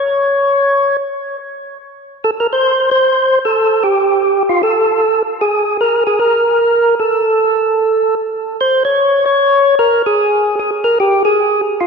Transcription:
0.00 0.97 C#5 medium
2.24 2.31 A4 medium
2.40 2.47 A#4 medium
2.53 2.90 C5 loud
2.91 3.39 C5 loud
3.45 3.83 A4 medium
3.84 4.43 G4 medium
4.49 4.62 F4 medium
4.63 5.23 A4 medium
5.41 5.77 G#4 medium
5.81 6.04 A#4 medium
6.07 6.19 G#4 medium
6.19 6.95 A#4 medium
7.00 8.15 A4 medium
8.61 8.83 C5 medium
8.85 9.25 C#5 loud
9.26 9.75 C#5 loud
9.79 10.02 A#4 medium
10.06 10.55 G#4 loud
10.59 10.71 G#4 medium
10.84 10.98 A#4 medium
11.00 11.23 G4 medium
11.25 11.61 G#4 loud
11.80 11.87 F4 medium

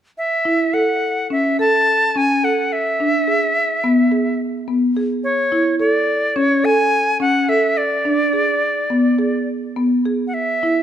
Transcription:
0.18 0.75 E5 medium
0.45 0.64 E4 medium
0.74 1.11 A4 medium
0.74 1.30 F#5 medium
1.30 1.49 C#4 medium
1.30 1.58 E5 medium
1.59 1.97 A4 medium
1.59 2.19 A5 medium
2.16 2.34 C#4 medium
2.16 2.46 G#5 medium
2.44 2.62 A4 medium
2.44 2.74 F#5 medium
2.72 4.40 E5 medium
3.00 3.19 D4 medium
3.27 3.65 G#4 medium
3.84 4.02 B3 medium
4.12 4.49 G#4 medium
4.68 4.86 B3 medium
4.97 5.15 G#4 medium
5.24 5.76 C#5 medium
5.52 5.70 E4 medium
5.80 6.17 A4 medium
5.80 6.38 D5 medium
6.36 6.55 C#4 medium
6.36 6.66 C#5 medium
6.64 7.01 A4 medium
6.64 7.20 G#5 medium
7.20 7.39 C#4 medium
7.20 7.51 F#5 medium
7.49 7.67 A4 medium
7.49 7.79 E5 medium
7.77 9.48 D5 medium
8.05 8.24 D4 medium
8.33 8.71 G#4 medium
8.90 9.09 B3 medium
9.19 9.57 G#4 medium
9.76 9.96 B3 medium
10.06 10.25 G#4 medium
10.27 10.35 F#5 soft
10.34 10.83 E5 medium
10.63 10.82 E4 medium

